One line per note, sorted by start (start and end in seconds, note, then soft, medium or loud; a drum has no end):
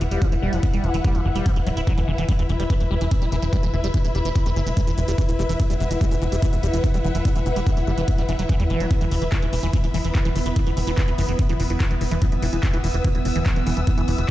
0.00 0.07 E1 loud
0.00 0.04 E3 medium
0.00 14.31 E4 medium
0.00 14.31 B4 medium
0.00 14.31 E5 medium
0.00 2.46 F#5 medium
0.00 closed hi-hat medium
0.11 0.18 E1 medium
0.11 0.23 G3 medium
0.11 closed hi-hat soft
0.22 0.28 E3 medium
0.22 kick loud
0.22 closed hi-hat medium
0.32 0.38 E1 medium
0.32 0.35 E3 medium
0.32 closed hi-hat soft
0.42 0.49 E1 loud
0.42 0.54 G3 medium
0.53 0.59 E1 medium
0.53 0.59 E3 medium
0.53 closed hi-hat medium
0.63 0.66 E3 medium
0.63 kick loud
0.63 closed hi-hat medium
0.73 0.80 E1 medium
0.73 0.85 G3 medium
0.73 closed hi-hat soft
0.84 0.90 E1 loud
0.84 0.90 E3 medium
0.84 closed hi-hat soft
0.94 1.00 E1 medium
0.94 0.97 E3 medium
0.94 closed hi-hat soft
1.04 1.16 G3 medium
1.04 kick loud
1.04 closed hi-hat medium
1.15 1.21 E1 medium
1.15 1.21 E3 medium
1.15 closed hi-hat soft
1.25 1.31 F#1 loud
1.25 1.28 E3 medium
1.36 1.42 E1 medium
1.36 1.47 G3 medium
1.36 closed hi-hat soft
1.46 1.52 E3 medium
1.46 kick loud
1.46 closed hi-hat medium
1.56 1.62 E1 medium
1.56 1.59 E3 medium
1.56 closed hi-hat medium
1.67 1.73 D1 loud
1.67 1.69 F#3 loud
1.67 closed hi-hat medium
1.77 1.83 D1 medium
1.77 1.81 E4 medium
1.77 closed hi-hat soft
1.87 1.93 F#3 medium
1.87 kick loud
1.87 closed hi-hat medium
1.98 2.04 E1 medium
1.98 2.00 E3 loud
1.98 closed hi-hat soft
2.08 2.14 E1 loud
2.08 2.12 E3 medium
2.18 2.24 E1 medium
2.18 2.24 E3 medium
2.18 closed hi-hat soft
2.29 2.33 G3 medium
2.29 kick loud
2.29 closed hi-hat medium
2.39 2.45 E1 medium
2.39 2.43 E3 medium
2.39 closed hi-hat soft
2.44 5.77 B5 medium
2.49 2.55 E1 loud
2.49 2.52 E3 medium
2.49 closed hi-hat soft
2.60 2.66 E1 medium
2.60 2.64 G3 medium
2.60 closed hi-hat soft
2.70 2.74 E3 medium
2.70 kick loud
2.70 closed hi-hat medium
2.80 2.86 E1 medium
2.80 2.83 E3 medium
2.80 closed hi-hat soft
2.91 2.97 E1 medium
2.91 2.95 G3 medium
3.01 3.07 E1 medium
3.01 3.05 E3 medium
3.01 closed hi-hat soft
3.11 3.14 E3 medium
3.11 kick loud
3.11 closed hi-hat medium
3.22 3.28 E1 medium
3.22 3.26 G3 medium
3.22 closed hi-hat soft
3.32 3.38 E1 loud
3.32 3.36 E3 medium
3.32 closed hi-hat medium
3.42 3.49 E1 medium
3.42 3.45 E3 medium
3.42 closed hi-hat soft
3.53 3.57 G3 medium
3.53 kick loud
3.53 closed hi-hat medium
3.63 3.69 E1 medium
3.63 3.67 E3 medium
3.63 closed hi-hat soft
3.73 3.80 E1 loud
3.73 3.76 E3 medium
3.84 3.90 E1 medium
3.84 3.88 G3 medium
3.84 closed hi-hat soft
3.94 3.98 E3 medium
3.94 kick loud
3.94 closed hi-hat medium
4.04 4.11 E1 medium
4.04 4.07 E3 medium
4.04 closed hi-hat medium
4.15 4.21 E1 loud
4.15 4.19 G3 medium
4.15 closed hi-hat soft
4.25 4.31 E1 medium
4.25 4.29 E3 medium
4.25 closed hi-hat medium
4.36 4.38 E3 medium
4.36 kick loud
4.36 closed hi-hat medium
4.46 4.52 E1 medium
4.46 4.50 G3 medium
4.46 closed hi-hat medium
4.56 4.62 F#1 medium
4.56 4.60 E3 medium
4.67 4.73 E1 medium
4.67 4.69 E3 medium
4.67 closed hi-hat soft
4.77 4.81 G3 medium
4.77 kick loud
4.77 closed hi-hat medium
4.87 4.93 E1 medium
4.87 4.91 E3 medium
4.87 closed hi-hat medium
4.98 5.04 E1 loud
4.98 5.00 E3 medium
4.98 closed hi-hat medium
5.08 5.14 E1 medium
5.08 5.12 G3 medium
5.08 closed hi-hat medium
5.18 5.22 E3 medium
5.18 kick loud
5.18 closed hi-hat medium
5.29 5.35 E1 medium
5.29 5.31 E3 medium
5.29 closed hi-hat medium
5.39 5.45 E1 loud
5.39 5.43 G3 medium
5.49 5.55 E1 medium
5.49 5.53 E3 medium
5.49 closed hi-hat medium
5.60 5.62 E3 medium
5.60 kick loud
5.60 closed hi-hat medium
5.70 5.76 E1 medium
5.70 5.74 G3 medium
5.70 closed hi-hat medium
5.75 9.08 F#5 medium
5.80 5.86 E1 loud
5.80 5.84 E3 medium
5.80 closed hi-hat soft
5.91 5.97 E1 medium
5.91 5.93 E3 medium
5.91 closed hi-hat medium
6.01 6.05 G3 medium
6.01 kick loud
6.01 closed hi-hat medium
6.11 6.18 E1 medium
6.11 6.15 E3 medium
6.11 closed hi-hat medium
6.22 6.28 E1 loud
6.22 6.24 E3 medium
6.32 6.38 E1 medium
6.32 6.36 G3 medium
6.32 closed hi-hat medium
6.42 6.47 E3 medium
6.42 kick loud
6.42 closed hi-hat medium
6.53 6.59 E1 medium
6.53 6.55 E3 medium
6.53 closed hi-hat medium
6.63 6.69 E1 loud
6.63 6.67 G3 medium
6.63 closed hi-hat medium
6.73 6.80 E1 medium
6.73 6.78 E3 medium
6.73 closed hi-hat medium
6.84 6.86 E3 medium
6.84 kick loud
6.84 closed hi-hat medium
6.94 7.00 E1 medium
6.94 6.98 G3 medium
6.94 closed hi-hat medium
7.04 7.11 E1 loud
7.04 7.09 E3 medium
7.15 7.21 E1 medium
7.15 7.17 E3 medium
7.15 closed hi-hat medium
7.25 7.29 G3 medium
7.25 kick loud
7.25 closed hi-hat medium
7.36 7.42 E1 medium
7.36 7.40 E3 medium
7.36 closed hi-hat medium
7.46 7.52 E1 loud
7.46 7.48 E3 medium
7.46 closed hi-hat soft
7.56 7.62 E1 medium
7.56 7.60 G3 medium
7.56 closed hi-hat medium
7.67 7.71 E3 medium
7.67 kick loud
7.67 closed hi-hat medium
7.77 7.83 E1 medium
7.77 7.79 E3 medium
7.77 closed hi-hat medium
7.87 7.93 F#1 loud
7.87 7.91 G3 medium
7.98 8.04 E1 medium
7.98 8.02 E3 medium
7.98 closed hi-hat medium
8.08 8.10 E3 medium
8.08 kick loud
8.08 closed hi-hat medium
8.18 8.24 E1 medium
8.18 8.22 G3 medium
8.18 closed hi-hat medium
8.29 8.35 E1 loud
8.29 8.33 E3 loud
8.29 closed hi-hat medium
8.39 8.45 E1 medium
8.39 8.43 F#3 medium
8.39 closed hi-hat medium
8.49 8.56 E3 medium
8.49 kick loud
8.49 closed hi-hat medium
8.60 8.66 E2 medium
8.60 8.64 G3 loud
8.60 closed hi-hat soft
8.70 8.76 E1 loud
8.70 8.82 E3 medium
8.70 closed hi-hat soft
8.80 8.86 E1 medium
8.80 8.87 G3 loud
8.80 closed hi-hat medium
8.91 8.93 E3 medium
8.91 14.31 B3 medium
8.91 14.31 B4 medium
8.91 kick loud
8.91 closed hi-hat medium
9.01 9.07 E1 medium
9.01 9.05 E3 loud
9.01 closed hi-hat medium
9.06 12.39 B5 medium
9.11 9.18 E1 loud
9.11 9.16 E3 medium
9.11 open hi-hat loud
9.22 9.28 E1 medium
9.22 9.24 E3 medium
9.22 closed hi-hat medium
9.32 9.36 E3 loud
9.32 kick loud
9.32 clap loud
9.32 closed hi-hat medium
9.42 9.49 E1 medium
9.42 9.47 E3 medium
9.42 closed hi-hat medium
9.53 9.59 E1 loud
9.53 9.55 E3 medium
9.53 open hi-hat loud
9.63 9.69 E1 medium
9.63 9.67 E3 medium
9.63 closed hi-hat medium
9.73 9.78 E3 medium
9.73 kick loud
9.73 closed hi-hat medium
9.84 9.90 E1 medium
9.84 9.86 E3 medium
9.84 closed hi-hat medium
9.94 10.00 E1 loud
9.94 9.98 E3 medium
9.94 open hi-hat loud
10.04 10.11 E1 medium
10.04 10.09 E3 medium
10.04 closed hi-hat medium
10.15 10.17 E3 medium
10.15 kick loud
10.15 clap loud
10.15 closed hi-hat medium
10.25 10.31 E1 loud
10.25 10.29 E3 loud
10.25 closed hi-hat medium
10.36 10.42 E1 loud
10.36 10.40 E3 medium
10.36 open hi-hat loud
10.46 10.52 E1 medium
10.46 10.48 E3 medium
10.46 closed hi-hat medium
10.56 10.60 E3 loud
10.56 kick loud
10.56 closed hi-hat medium
10.67 10.73 E1 medium
10.67 10.71 E3 medium
10.67 closed hi-hat medium
10.77 10.83 E1 loud
10.77 10.79 E3 medium
10.77 open hi-hat loud
10.87 10.93 E1 medium
10.87 10.91 E3 loud
10.87 closed hi-hat medium
10.98 11.02 E3 medium
10.98 kick loud
10.98 clap loud
10.98 closed hi-hat medium
11.08 11.14 E1 medium
11.08 11.10 E3 medium
11.08 closed hi-hat medium
11.18 11.24 F#1 loud
11.18 11.22 E3 loud
11.18 open hi-hat loud
11.29 11.35 E1 medium
11.29 11.33 E3 medium
11.29 closed hi-hat medium
11.39 11.41 E3 medium
11.39 kick loud
11.39 closed hi-hat medium
11.49 11.55 E1 medium
11.49 11.53 E3 loud
11.49 closed hi-hat medium
11.60 11.66 E1 loud
11.60 11.64 E3 medium
11.60 open hi-hat loud
11.70 11.76 E1 medium
11.70 11.72 E3 medium
11.70 closed hi-hat medium
11.80 11.84 E3 loud
11.80 kick loud
11.80 clap loud
11.80 closed hi-hat medium
11.91 11.97 E1 medium
11.91 11.95 E3 medium
11.91 closed hi-hat medium
12.01 12.07 E1 loud
12.01 12.04 E3 medium
12.01 open hi-hat loud
12.11 12.18 E1 medium
12.11 12.16 E3 loud
12.11 closed hi-hat medium
12.22 12.26 E3 medium
12.22 kick loud
12.22 closed hi-hat medium
12.32 12.38 E1 medium
12.32 12.35 E3 medium
12.32 closed hi-hat medium
12.37 14.31 E6 medium
12.42 12.49 E1 loud
12.42 12.47 E3 loud
12.42 open hi-hat loud
12.53 12.59 E1 medium
12.53 12.57 E3 medium
12.53 closed hi-hat soft
12.63 12.66 E3 medium
12.63 kick loud
12.63 clap loud
12.63 closed hi-hat medium
12.73 12.80 E1 medium
12.73 12.78 E3 loud
12.73 closed hi-hat soft
12.84 12.90 E1 loud
12.84 12.88 E3 medium
12.84 open hi-hat loud
12.94 13.00 E1 medium
12.94 12.97 E3 medium
12.94 closed hi-hat soft
13.04 13.09 E3 loud
13.04 kick loud
13.04 closed hi-hat medium
13.15 13.21 E1 medium
13.15 13.19 E3 medium
13.15 closed hi-hat medium
13.25 13.31 E1 loud
13.25 13.28 E3 medium
13.25 open hi-hat loud
13.36 13.42 E1 medium
13.36 13.40 E3 loud
13.36 closed hi-hat medium
13.46 13.50 E3 medium
13.46 kick loud
13.46 clap loud
13.46 closed hi-hat medium
13.56 13.62 E1 medium
13.56 13.59 E3 medium
13.56 closed hi-hat soft
13.67 13.73 E1 loud
13.67 13.71 E3 loud
13.67 open hi-hat loud
13.77 13.83 E1 medium
13.77 13.81 E3 medium
13.77 closed hi-hat medium
13.87 13.90 E3 medium
13.87 kick loud
13.87 closed hi-hat medium
13.98 14.04 E1 medium
13.98 14.02 E3 loud
13.98 closed hi-hat soft
14.08 14.14 E1 loud
14.08 14.12 E3 medium
14.08 open hi-hat loud
14.18 14.24 E1 medium
14.18 14.21 E3 medium
14.18 closed hi-hat medium